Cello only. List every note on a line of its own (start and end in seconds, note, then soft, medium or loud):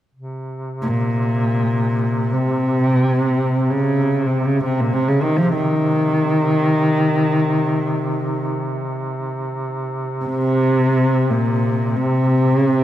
0.82 2.35 A#2 medium
2.34 3.71 C3 medium
3.70 4.28 C#3 medium
4.26 4.47 C3 medium
4.46 4.63 C#3 medium
4.64 4.82 C3 medium
4.80 4.95 A#2 medium
4.93 5.09 C3 medium
5.08 5.24 C#3 medium
5.22 5.38 D#3 medium
5.37 5.54 F3 medium
5.55 8.46 D#3 medium
10.25 11.32 C3 medium
11.31 11.98 A#2 medium
11.96 12.57 C3 medium
12.57 12.70 C#3 medium
12.70 12.84 C3 medium